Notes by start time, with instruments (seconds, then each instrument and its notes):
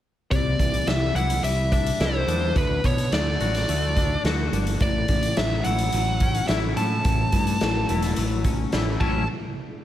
0.31 picked electric bass C2, clean electric guitar C3, lead electric guitar D5, kick, closed hi-hat
0.59 picked electric bass C2, clean electric guitar E3, kick, closed hi-hat
0.74 closed hi-hat
0.87 picked electric bass C2, clean electric guitar G3, lead electric guitar E5, snare, closed hi-hat
1.15 picked electric bass C2, clean electric guitar E4, lead electric guitar F#5, closed hi-hat
1.30 closed hi-hat
1.43 picked electric bass C2, clean electric guitar G3, lead electric guitar E5, closed hi-hat
1.72 clean electric guitar D4, lead electric guitar E5, kick, closed hi-hat
1.86 closed hi-hat
2.00 picked electric bass C2, clean electric guitar E4, lead electric guitar C5, snare, closed hi-hat
2.27 picked electric bass E2, clean electric guitar D4, closed hi-hat
2.56 picked electric bass D2, clean electric guitar D3, lead electric guitar B4, kick, closed hi-hat
2.84 picked electric bass B2, clean electric guitar D3, lead electric guitar C#5, kick, closed hi-hat
2.98 closed hi-hat
3.12 picked electric bass D2, clean electric guitar A3, lead electric guitar D5, snare, closed hi-hat
3.40 picked electric bass A1, clean electric guitar F#4, closed hi-hat
3.55 snare, closed hi-hat
3.69 picked electric bass D2, clean electric guitar A3, closed hi-hat
3.97 clean electric guitar D4, kick, closed hi-hat
4.24 picked electric bass D2, clean electric guitar F#4, snare, closed hi-hat
4.52 picked electric bass G1, clean electric guitar D4, closed hi-hat
4.67 closed hi-hat
4.80 picked electric bass A1, clean electric guitar A2, lead electric guitar D5, kick, closed hi-hat
5.08 picked electric bass A1, clean electric guitar A2, kick, closed hi-hat
5.23 closed hi-hat
5.37 picked electric bass A1, clean electric guitar F#3, lead electric guitar E5, snare, closed hi-hat
5.64 picked electric bass A1, clean electric guitar E4, lead electric guitar F#5, closed hi-hat
5.78 closed hi-hat
5.92 picked electric bass A1, clean electric guitar F#3, closed hi-hat
6.20 clean electric guitar C#4, kick, closed hi-hat
6.35 closed hi-hat
6.48 picked electric bass A1, clean electric guitar E4, lead electric guitar E5, snare, closed hi-hat
6.77 picked electric bass A2, clean electric guitar C#4, lead electric guitar A5, closed hi-hat
7.05 picked electric bass A1, clean electric guitar A2, kick, closed hi-hat
7.32 picked electric bass G2, clean electric guitar A2, kick, closed hi-hat
7.47 closed hi-hat
7.61 picked electric bass A1, clean electric guitar F#3, snare, closed hi-hat
7.89 picked electric bass E1, clean electric guitar E4, closed hi-hat
8.02 snare, closed hi-hat
8.16 picked electric bass A1, clean electric guitar F#3, closed hi-hat
8.44 clean electric guitar C#4, kick, closed hi-hat
8.72 picked electric bass A1, clean electric guitar E4, snare, closed hi-hat
9.00 picked electric bass A1, clean electric guitar A2 F#3 C#4 E4, lead electric guitar A5, kick, crash